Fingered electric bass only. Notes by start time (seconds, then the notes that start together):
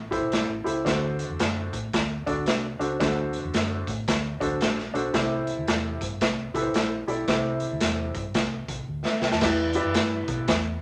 0.22 B1
0.49 A1
0.66 C#2
0.86 D2
1.30 E2
1.40 F#2
1.73 A2
1.94 D2
2.27 D2
2.46 C2
2.80 C#2
3.00 D2
3.44 E2
3.54 F#2
3.88 A2
4.08 D2
4.41 D2
4.60 A#1
4.94 B1
5.14 C2
5.57 D2
5.67 E2
6.01 G2
6.21 C2
6.55 C2
6.74 A#1
7.08 B1
7.28 C2
7.72 D2
7.81 E2
8.15 G2
8.35 C2
8.68 C2
8.88 D2
9.22 C2
9.32 E2
9.41 E2
9.85 F#2
9.95 G2
10.28 B2
10.48 E2